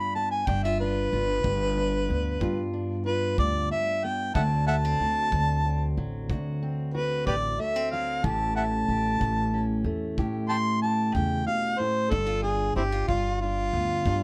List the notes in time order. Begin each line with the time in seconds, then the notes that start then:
Already playing: G2 D3 B3 D4 F4
0.00 B5
0.15 B3 A5
0.31 G#5
0.47 G1 G2 D4 G5, kick
0.63 F4 E5
0.80 D4 B4
1.13 G1 F4
1.43 G1 G2, kick
1.77 D4
2.09 D2 B3
2.40 G2 F4, kick
2.73 D4
3.06 F4 B4
3.38 D2 G2 D5, kick
3.71 D4 E5
4.04 B3 G5
4.35 D2 D3 F#3 C4 F#4 E5 F#5 A5, kick
4.67 A3 E5 F#5 A5
4.85 C4
5.00 D2 F#4
5.32 D2, kick
5.65 C4
5.97 A1 F#3
6.30 D2 D3 F#4, kick
6.63 C4
6.94 F#4 B4
7.26 A1 D2 G4 B4 D5, kick
7.59 A3 E5
7.76 C4
7.91 F#3 F5
8.24 A1 A2 E3 A3 C#4 G4 A5, kick
8.56 C#4 E5 F#5 A5
8.88 A1 G4
9.20 A1 A2, kick
9.54 C#4
9.84 E2 A3
10.18 A2 G4, kick
10.49 C#4 G5 A5 C6
10.82 G4 A5
11.14 E2 C#3 G5, kick
11.47 B2 F5
11.79 A2 C5
12.11 G1 G2 D4 A4, kick
12.27 F4
12.43 D4 G#4
12.76 G1 C4 D4 E4 G4
12.92 F4
13.08 G1 G2 F4, kick
13.41 D4 F4
13.73 D2 B3
14.06 G2 D4, kick